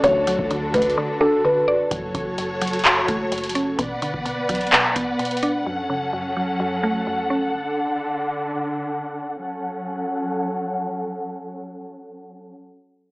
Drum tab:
HH |x-----------x-----------x-----------x---x---x---------------------------------------------------|x-----------x-----------x-----------x--x--x--x--x-----------x-----------x--x--x--x--x-----------|x-----------x-----------x-----------x--x--x--x--x-----------x-----------x--x--x--x--x-----------|------------------------------------------------------------------------------------------------|
CP |------------------------------------------------------------------------------------------------|------------------------------------------------x-----------------------------------------------|------------------------------------------------x-----------------------------------------------|------------------------------------------------------------------------------------------------|
BD |o-----------------o-----------------o-----------------------------------------------------------|o-----------o-----------------------------------------------o-----------------------------------|o-----------------o-----------------o-----------------------o-----------------------------------|------------------------------------------------------------------------------------------------|

HH |------------------------------------------------------------------------------------------------|------------------------------------------------------------------------------------------------|------------------------------------------------------------------------------------------------|
CP |------------------------------------------------------------------------------------------------|------------------------------------------------------------------------------------------------|------------------------------------------------------------------------------------------------|
BD |------------------------------------------------------------------------------------------------|------------------------------------------------------------------------------------------------|------------------------------------------------------------------------------------------------|